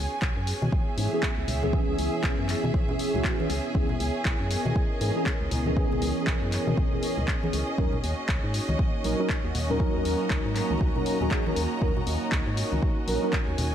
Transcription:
Already playing: B3 C#4 E4 F#4 G#4 C#5 G#5
0.22 B1, kick, clap
0.37 F#2
0.47 open hi-hat
0.62 B2, high conga
0.72 kick
0.82 E5
0.97 G#2 E3 B3 C#4 G#4, open hi-hat
1.12 E3 B3 C#4 G#4
1.23 kick, clap
1.38 C#2
1.48 C#2, open hi-hat, low conga
1.62 E3 B3 C#4 G#4, high conga, low conga
1.72 E3 B3 C#4 G#4, kick
1.88 C#2
1.98 C#2, open hi-hat
2.24 B1, kick, clap
2.39 F#2
2.49 clap, open hi-hat
2.64 B2, high conga
2.74 B1, kick
2.88 E3 B3 C#4 G#4, low conga
2.99 open hi-hat
3.14 C#2 E3 B3 C#4 F#4, low conga
3.25 kick, clap
3.39 E3 B3 C#4 G#4, high conga
3.50 C#2, open hi-hat
3.74 C#2 E3 B3 C#4 G#4 A#4, kick
3.89 low conga
4.00 C#2, open hi-hat
4.25 B1, kick, clap
4.40 F#2
4.44 D#5
4.51 open hi-hat
4.65 B2, high conga
4.76 kick
5.00 G#2 E3 B3 C#4 G#4, open hi-hat
5.15 E3 B3 C#4 G#4
5.26 kick, clap
5.41 C#2
5.51 C#2, open hi-hat, low conga
5.66 E3 B3 C#4 G#4, high conga, low conga
5.76 E3 B3 C#4 G#4, kick
5.91 C#2, high conga, low conga
6.02 C#2, open hi-hat
6.27 B1, kick, clap
6.42 F#2
6.52 clap, open hi-hat
6.67 B2, high conga
6.77 B1, kick
6.92 E3 B3 C#4 G#4, low conga
7.03 open hi-hat
7.18 C#2, low conga
7.28 kick, clap
7.42 E3 B3 C#4 G#4, high conga
7.53 C#2, open hi-hat
7.78 D#2 F#3 A#3 C#4 D#4 F#4 A#4, kick
7.92 low conga
8.00 D#2 F#4, open hi-hat
8.29 C#2, kick, clap
8.44 G#2
8.54 open hi-hat
8.69 C#2, high conga
8.79 kick
9.04 A#1 F#3 C#4 D#4 A#4, open hi-hat
9.19 F#3 C#4 D#4 A#4
9.30 kick, clap
9.44 D#2
9.55 D#2, open hi-hat, low conga
9.69 F#3 C#4 D#4 A#4 A#5, high conga, low conga
9.79 F#3 C#4 D#4 A#4, kick
9.95 D#2
10.05 D#2, open hi-hat
10.30 C#2, kick, clap
10.45 G#2
10.56 clap, open hi-hat
10.70 C#2, high conga
10.81 C#2, kick
10.95 F#3 C#4 D#4 A#4, low conga
11.06 open hi-hat
11.20 D#2 F#3 C#4 D#4 G#4, low conga
11.31 kick, clap
11.46 F#3 C#4 D#4 A#4, high conga
11.56 D#2, open hi-hat
11.81 D#2 F#3 C#4 D#4 A#4, kick
11.97 low conga
12.07 D#2, open hi-hat
12.32 C#2, kick, clap
12.47 G#2
12.57 open hi-hat
12.72 C#2, high conga
12.82 kick
13.07 A#1 F#3 C#4 D#4 A#4, open hi-hat
13.22 F#3 C#4 D#4 A#4
13.28 G#5
13.33 kick, clap
13.48 D#2
13.58 D#2, open hi-hat, low conga

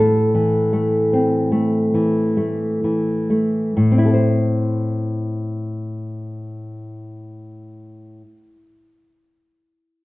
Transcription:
Already playing: A2 A4
0.35 E3
0.73 A3
1.13 C4
1.52 A3
1.94 E3
2.37 A3
2.84 E3
3.30 A3
3.77 A2
3.91 C4
3.98 E4
4.05 A4
4.14 C5

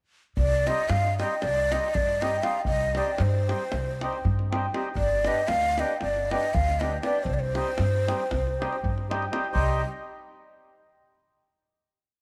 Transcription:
0.37 C2 D5, davul low
0.52 davul high
0.66 G3 C4 D#4 G4 D#5, davul high
0.78 davul high
0.89 G2 F5, davul high
1.05 davul high
1.19 G3 C4 D#4 G4 D#5, davul high
1.42 C2 D5, davul high
1.57 davul high
1.72 G3 C4 D#4 G4 D#5, davul high
1.84 davul high
1.94 G2 D5, davul low
2.08 davul high
2.21 G3 C4 D#4 G4 D#5, davul high
2.43 G3 C4 D#4 G4 F5, davul high
2.65 C2 D#5, davul low
2.81 davul high
2.95 G3 C4 D#4 G4 D5, davul high
3.07 davul high
3.18 G2 C5, davul high
3.34 davul high
3.48 G3 C4 D#4 G4, davul high
3.72 C2, davul high
3.87 davul high
4.01 G3 C4 D#4 G4, davul high
4.13 davul high
4.25 G2, davul low
4.39 davul high
4.51 G3 C4 D#4 G4, davul high
4.74 G3 C4 D#4 G4, davul high
4.95 G1 D5, davul low
5.10 davul high
5.25 G3 B3 D4 G4 D#5, davul high
5.37 davul high
5.48 D2 F5, davul high
5.63 davul high
5.78 G3 B3 D4 G4 D#5, davul high
6.01 G1 D5, davul high
6.16 davul high
6.31 G3 B3 D4 G4 D#5, davul high
6.43 davul high
6.54 D2 F5, davul low
6.68 davul high
6.80 G3 B3 D4 G4 D#5, davul high
7.02 G3 B3 D4 G4 D5, davul high
7.24 C2 C5, davul low
7.34 D5
7.40 C5
7.54 G3 C4 D#4 G4, davul high
7.67 davul high
7.78 G2, davul high
7.93 davul high
8.07 G3 C4 D#4 G4, davul high
8.20 davul high
8.31 C2, davul high, davul low
8.47 davul high
8.60 G3 C4 D#4 G4, davul high
8.72 davul high
8.84 G2, davul low
8.98 davul high
9.09 G3 C4 D#4 G4, davul high
9.22 davul high
9.31 G3 C4 D#4 G4, davul high
9.44 davul high
9.52 C2 G3 C4 D#4 G4 D#5, davul low

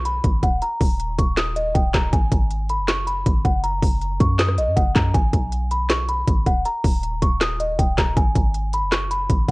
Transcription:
Already playing: B1
0.05 B5, closed hi-hat
0.24 G#1, kick, closed hi-hat
0.43 D#1 F#5, kick, closed hi-hat
0.62 A#5, closed hi-hat
0.81 D#1, kick, open hi-hat
0.99 closed hi-hat
1.18 D#1 C#6, kick, closed hi-hat
1.37 D#6, snare, clap, closed hi-hat
1.56 D#5, closed hi-hat
1.75 D#1 G5, kick, closed hi-hat
1.94 D#1 A#5, kick, snare, clap, closed hi-hat
2.13 G#1 G#5, kick, closed hi-hat
2.32 G#1, kick, closed hi-hat
2.51 closed hi-hat
2.69 B5, closed hi-hat
2.79 F#1
2.88 C#6, snare, clap, closed hi-hat
3.07 B5, closed hi-hat
3.26 G#1, kick, closed hi-hat
3.45 F#1 F#5, kick, closed hi-hat
3.64 A#5, closed hi-hat
3.82 F#1, kick, open hi-hat
4.01 closed hi-hat
4.20 F#2 C#6, kick, closed hi-hat
4.39 D#6, snare, clap, closed hi-hat
4.48 cross-stick
4.58 A#1 D#5, closed hi-hat
4.67 F#2
4.76 F#1 F#5, kick, closed hi-hat
4.96 F#2 A#5, kick, snare, clap, closed hi-hat
5.14 G#1 G#5, kick, closed hi-hat
5.33 B1, kick, closed hi-hat
5.52 closed hi-hat
5.71 B5, closed hi-hat
5.90 C#6, snare, clap, closed hi-hat
6.09 B5, closed hi-hat
6.28 G#1, kick, closed hi-hat
6.47 D#1 F#5, kick, closed hi-hat
6.66 A#5, closed hi-hat
6.84 D#1, kick, open hi-hat
7.03 closed hi-hat
7.22 D#1 C#6, kick, closed hi-hat
7.41 D#6, snare, clap, closed hi-hat
7.60 D#5, closed hi-hat
7.78 D#1 G5, kick, closed hi-hat
7.98 D#1 A#5, kick, snare, clap, closed hi-hat
8.17 G#1 G#5, kick, closed hi-hat
8.35 G#1, kick, closed hi-hat
8.54 closed hi-hat
8.73 B5, closed hi-hat
8.83 F#1
8.92 C#6, snare, clap, closed hi-hat
9.11 B5, closed hi-hat
9.30 G#1, kick, closed hi-hat

